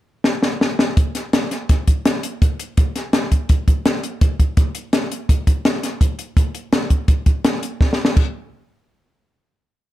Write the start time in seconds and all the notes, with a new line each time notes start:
0.24 snare
0.43 snare
0.61 snare
0.79 snare
0.97 kick, closed hi-hat
1.15 snare, closed hi-hat
1.33 snare, closed hi-hat
1.51 snare, closed hi-hat
1.69 kick, snare, closed hi-hat
1.88 kick, closed hi-hat
2.05 snare, closed hi-hat
2.23 closed hi-hat
2.42 kick, closed hi-hat
2.60 closed hi-hat
2.77 kick, closed hi-hat
2.96 snare, closed hi-hat
3.13 snare, closed hi-hat
3.32 kick, closed hi-hat
3.49 kick, closed hi-hat
3.68 kick, closed hi-hat
3.86 snare, closed hi-hat
4.03 closed hi-hat
4.21 kick, closed hi-hat
4.40 kick, closed hi-hat
4.57 kick, closed hi-hat
4.75 closed hi-hat
4.93 snare, closed hi-hat
5.12 closed hi-hat
5.29 kick, closed hi-hat
5.47 kick, closed hi-hat
5.65 snare, closed hi-hat
5.83 snare, closed hi-hat
6.01 kick, closed hi-hat
6.19 closed hi-hat
6.37 kick, closed hi-hat
6.55 closed hi-hat
6.73 snare, closed hi-hat
6.90 kick, closed hi-hat
7.08 kick, closed hi-hat
7.26 kick, closed hi-hat
7.45 snare, closed hi-hat
7.63 closed hi-hat
7.81 kick, snare
7.93 snare
8.05 snare
8.17 kick, crash